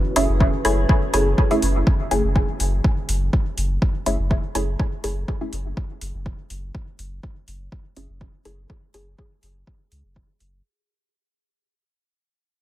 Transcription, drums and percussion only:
0.16 open hi-hat medium
0.40 kick loud
0.65 open hi-hat medium
0.89 kick loud
1.14 open hi-hat medium
1.38 kick loud
1.51 open hi-hat soft
1.62 open hi-hat medium
1.87 kick loud
2.11 open hi-hat medium
2.36 kick loud
2.60 open hi-hat medium
2.84 kick loud
3.09 open hi-hat medium
3.33 kick medium
3.58 open hi-hat medium
3.82 kick loud
4.06 open hi-hat medium
4.31 kick loud
4.55 open hi-hat medium
4.79 kick loud
5.04 open hi-hat medium
5.28 kick medium
5.53 open hi-hat medium
5.77 kick loud
6.01 open hi-hat medium
6.26 kick medium
6.50 open hi-hat medium
6.75 kick loud
6.99 open hi-hat medium
7.23 kick medium
7.48 open hi-hat medium
7.72 kick loud
7.97 open hi-hat medium
8.21 kick medium
8.45 open hi-hat medium
8.70 kick loud
8.94 open hi-hat medium
9.19 kick medium
9.43 open hi-hat medium
9.67 kick loud
9.92 open hi-hat medium
10.16 kick medium
10.40 open hi-hat medium

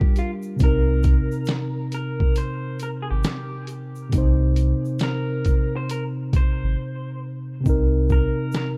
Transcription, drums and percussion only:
0.01 kick loud
0.16 closed hi-hat medium
0.16 shaker medium
0.42 shaker medium
0.59 kick loud
0.59 closed hi-hat medium
0.59 shaker medium
1.03 kick medium
1.03 closed hi-hat medium
1.03 shaker medium
1.32 shaker soft
1.45 snare loud
1.45 closed hi-hat medium
1.45 shaker medium
1.92 closed hi-hat medium
1.92 shaker soft
2.20 kick medium
2.35 closed hi-hat medium
2.35 shaker medium
2.79 closed hi-hat medium
2.79 shaker medium
3.23 snare loud
3.23 closed hi-hat medium
3.23 shaker medium
3.67 closed hi-hat medium
3.67 shaker medium
3.95 shaker soft
4.12 kick loud
4.12 closed hi-hat medium
4.12 shaker medium
4.56 closed hi-hat medium
4.56 shaker soft
4.85 shaker soft
4.99 snare loud
4.99 closed hi-hat medium
4.99 shaker medium
5.45 kick medium
5.45 closed hi-hat medium
5.45 shaker soft
5.89 closed hi-hat medium
5.89 shaker medium
6.33 kick loud
6.33 closed hi-hat medium
6.33 shaker medium
7.66 kick loud
7.66 shaker medium
8.09 kick medium
8.09 shaker soft
8.52 snare medium
8.52 shaker medium

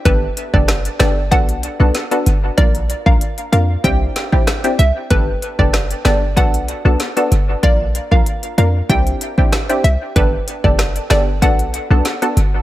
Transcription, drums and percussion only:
0.05 kick loud
0.05 closed hi-hat medium
0.37 closed hi-hat medium
0.54 kick medium
0.68 cross-stick medium
0.68 snare loud
0.68 closed hi-hat medium
0.85 closed hi-hat medium
0.99 cross-stick loud
0.99 snare loud
0.99 closed hi-hat medium
1.32 kick loud
1.32 closed hi-hat medium
1.49 closed hi-hat medium
1.63 closed hi-hat medium
1.95 snare medium
1.95 closed hi-hat medium
2.11 closed hi-hat medium
2.26 closed hi-hat medium
2.58 kick loud
2.58 closed hi-hat medium
2.75 closed hi-hat medium
2.90 closed hi-hat medium
3.06 kick medium
3.21 closed hi-hat medium
3.38 closed hi-hat medium
3.53 closed hi-hat medium
3.84 kick loud
3.84 closed hi-hat medium
4.16 snare medium
4.16 closed hi-hat medium
4.32 kick loud
4.47 cross-stick loud
4.47 snare loud
4.47 closed hi-hat medium
4.64 closed hi-hat medium
4.79 closed hi-hat medium
5.10 kick loud
5.10 closed hi-hat medium
5.42 closed hi-hat medium
5.59 kick medium
5.73 cross-stick loud
5.73 snare loud
5.73 closed hi-hat medium
5.91 closed hi-hat medium
6.05 cross-stick loud
6.05 snare loud
6.05 closed hi-hat medium
6.37 kick loud
6.37 closed hi-hat medium
6.54 closed hi-hat medium
6.68 closed hi-hat medium
7.00 snare medium
7.00 closed hi-hat medium
7.17 closed hi-hat medium
7.32 closed hi-hat medium
7.63 kick loud
7.63 closed hi-hat medium
7.95 closed hi-hat medium
8.11 kick medium
8.26 closed hi-hat medium
8.43 closed hi-hat medium
8.58 closed hi-hat medium
8.89 kick medium
8.89 closed hi-hat medium
9.07 closed hi-hat medium
9.21 closed hi-hat medium
9.38 kick loud
9.52 cross-stick loud
9.52 snare loud
9.52 closed hi-hat medium
9.70 closed hi-hat medium
9.85 closed hi-hat medium
10.16 kick loud
10.16 closed hi-hat medium
10.48 closed hi-hat medium
10.64 kick medium
10.79 cross-stick medium
10.79 snare loud
10.79 closed hi-hat medium
10.96 closed hi-hat medium
11.10 cross-stick loud
11.10 snare loud
11.10 closed hi-hat medium
11.42 kick loud
11.42 closed hi-hat medium
11.59 closed hi-hat medium
11.74 closed hi-hat medium
12.05 snare medium
12.05 closed hi-hat medium
12.22 closed hi-hat medium
12.37 closed hi-hat medium

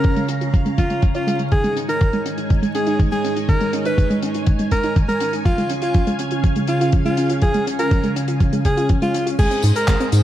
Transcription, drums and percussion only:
0.04 kick loud
0.04 closed hi-hat medium
0.16 closed hi-hat medium
0.28 closed hi-hat loud
0.41 closed hi-hat soft
0.54 kick loud
0.54 closed hi-hat medium
0.66 closed hi-hat medium
0.78 kick medium
0.78 closed hi-hat medium
0.90 closed hi-hat medium
1.02 kick loud
1.02 closed hi-hat medium
1.15 closed hi-hat medium
1.28 closed hi-hat loud
1.39 closed hi-hat soft
1.52 kick loud
1.52 closed hi-hat medium
1.64 closed hi-hat medium
1.77 closed hi-hat medium
1.89 closed hi-hat medium
2.01 kick loud
2.01 closed hi-hat medium
2.13 closed hi-hat medium
2.26 closed hi-hat loud
2.38 closed hi-hat medium
2.50 kick loud
2.50 closed hi-hat medium
2.63 closed hi-hat medium
2.75 closed hi-hat medium
2.87 closed hi-hat soft
3.00 kick loud
3.00 closed hi-hat medium
3.12 closed hi-hat medium
3.25 closed hi-hat medium
3.36 closed hi-hat medium
3.49 kick loud
3.49 closed hi-hat medium
3.60 closed hi-hat medium
3.73 closed hi-hat medium
3.85 closed hi-hat soft
3.98 kick loud
3.98 closed hi-hat medium
4.10 closed hi-hat medium
4.22 closed hi-hat medium
4.34 closed hi-hat medium
4.46 kick loud
4.46 closed hi-hat medium
4.59 closed hi-hat medium
4.71 kick medium
4.71 closed hi-hat medium
4.83 closed hi-hat soft
4.96 kick loud
4.96 closed hi-hat medium
5.09 closed hi-hat medium
5.20 closed hi-hat medium
5.33 closed hi-hat medium
5.45 kick loud
5.45 closed hi-hat medium
5.58 closed hi-hat soft
5.70 closed hi-hat medium
5.82 closed hi-hat medium
5.94 kick loud
5.94 closed hi-hat medium
6.07 closed hi-hat medium
6.19 closed hi-hat medium
6.31 closed hi-hat soft
6.44 kick loud
6.44 closed hi-hat medium
6.56 closed hi-hat medium
6.67 closed hi-hat medium
6.81 closed hi-hat medium
6.92 kick loud
6.92 closed hi-hat medium
7.06 closed hi-hat soft
7.17 closed hi-hat medium
7.29 closed hi-hat medium
7.42 kick loud
7.42 closed hi-hat medium
7.54 closed hi-hat medium
7.67 closed hi-hat medium
7.79 closed hi-hat medium
7.91 kick loud
7.91 closed hi-hat medium
8.04 closed hi-hat soft
8.16 closed hi-hat loud
8.28 closed hi-hat medium
8.40 kick loud
8.40 closed hi-hat medium
8.53 closed hi-hat medium
8.65 kick medium
8.65 closed hi-hat medium
8.77 closed hi-hat medium
8.89 kick loud
8.89 closed hi-hat medium
9.02 closed hi-hat medium
9.14 closed hi-hat loud
9.27 closed hi-hat medium
9.39 kick loud
9.39 closed hi-hat medium
9.39 crash loud
9.39 tambourine soft
9.51 closed hi-hat soft
9.51 tambourine soft
9.62 closed hi-hat loud
9.62 tambourine medium
9.75 closed hi-hat medium
9.75 tambourine soft
9.88 kick loud
9.88 clap loud
9.88 closed hi-hat medium
9.88 tambourine soft
10.00 closed hi-hat soft
10.00 tambourine soft
10.12 closed hi-hat loud
10.12 tambourine medium

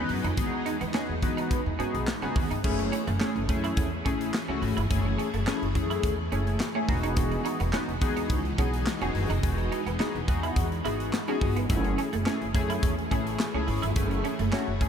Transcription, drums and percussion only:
0.09 open hi-hat medium
0.24 closed hi-hat medium
0.37 kick loud
0.37 closed hi-hat loud
0.66 closed hi-hat medium
0.81 closed hi-hat soft
0.94 snare loud
0.94 clap medium
1.23 kick medium
1.23 closed hi-hat medium
1.38 closed hi-hat medium
1.51 kick loud
1.51 closed hi-hat medium
1.80 closed hi-hat medium
1.95 closed hi-hat medium
2.07 snare loud
2.07 clap loud
2.22 closed hi-hat soft
2.36 kick loud
2.36 open hi-hat medium
2.51 closed hi-hat medium
2.64 kick loud
2.64 crash loud
2.79 closed hi-hat soft
2.93 closed hi-hat medium
3.07 closed hi-hat medium
3.20 snare loud
3.20 clap loud
3.36 closed hi-hat soft
3.49 kick loud
3.49 closed hi-hat medium
3.64 closed hi-hat medium
3.77 kick loud
3.77 closed hi-hat loud
4.06 kick medium
4.06 closed hi-hat medium
4.21 closed hi-hat medium
4.34 snare loud
4.34 clap loud
4.63 open hi-hat medium
4.78 closed hi-hat medium
4.91 kick loud
4.91 closed hi-hat loud
5.19 closed hi-hat medium
5.34 closed hi-hat medium
5.47 snare loud
5.47 clap loud
5.63 closed hi-hat soft
5.75 kick loud
5.75 closed hi-hat medium
5.91 closed hi-hat medium
6.03 kick loud
6.03 closed hi-hat loud
6.32 closed hi-hat medium
6.47 closed hi-hat medium
6.60 snare loud
6.60 clap medium
6.89 kick medium
6.89 open hi-hat medium
7.04 closed hi-hat medium
7.17 kick loud
7.17 closed hi-hat loud
7.32 closed hi-hat soft
7.46 closed hi-hat medium
7.60 closed hi-hat medium
7.73 snare loud
7.73 clap medium
7.89 closed hi-hat soft
8.01 kick medium
8.01 closed hi-hat medium
8.17 closed hi-hat medium
8.30 kick loud
8.30 closed hi-hat medium
8.45 closed hi-hat soft
8.58 kick loud
8.58 closed hi-hat medium
8.74 closed hi-hat medium
8.87 snare loud
8.87 clap loud
9.01 closed hi-hat soft
9.15 open hi-hat medium
9.30 closed hi-hat medium
9.43 kick loud
9.43 closed hi-hat loud
9.58 closed hi-hat soft
9.72 closed hi-hat medium
9.87 closed hi-hat soft
10.00 snare loud
10.00 clap medium
10.16 closed hi-hat soft
10.28 kick loud
10.28 closed hi-hat medium
10.43 closed hi-hat medium
10.56 kick loud
10.56 closed hi-hat loud
10.72 closed hi-hat soft
10.85 closed hi-hat medium
11.00 closed hi-hat medium
11.13 snare loud
11.13 clap medium
11.28 closed hi-hat soft
11.41 kick loud
11.41 open hi-hat medium
11.57 closed hi-hat medium
11.70 kick loud
11.70 closed hi-hat loud
11.84 closed hi-hat soft
11.98 closed hi-hat medium
12.13 closed hi-hat medium
12.26 snare loud
12.26 clap medium
12.42 closed hi-hat soft
12.55 kick loud
12.55 closed hi-hat medium
12.70 closed hi-hat medium
12.83 kick loud
12.83 closed hi-hat medium
12.99 closed hi-hat soft
13.11 kick medium
13.11 closed hi-hat medium
13.27 closed hi-hat medium
13.39 snare loud
13.39 clap loud
13.68 open hi-hat medium
13.83 closed hi-hat medium
13.96 kick loud
13.96 closed hi-hat loud
14.11 closed hi-hat soft
14.25 closed hi-hat medium
14.39 closed hi-hat medium
14.53 snare loud
14.53 clap medium
14.81 kick medium
14.81 closed hi-hat medium

